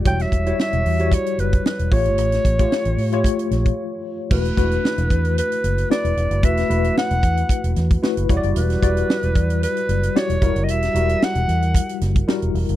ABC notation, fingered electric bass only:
X:1
M:4/4
L:1/16
Q:"Swing 16ths" 1/4=113
K:Bm
V:1 name="Fingered electric bass" clef=bass
E,,,2 E,,,2 z E,,, E,,3 z F,,,2 z E,,, A,,, G,,, | A,,,2 A,,,2 z A,,, A,,3 z ^A,,,2 z4 | E,,,2 E,,,2 z E,,, E,,3 z F,,,2 z E,,, E,,, F,,, | E,,,2 E,,,2 z E,,, E,,2 z E,,, E,,2 z F,,, E,,, F,,, |
E,,,2 E,,,2 z E,,, E,,3 z F,,,2 z E,,, E,,, F,,, | E,,,2 E,,,2 z E,,, E,,3 z F,,,2 z E,,, E,,, F,,, |]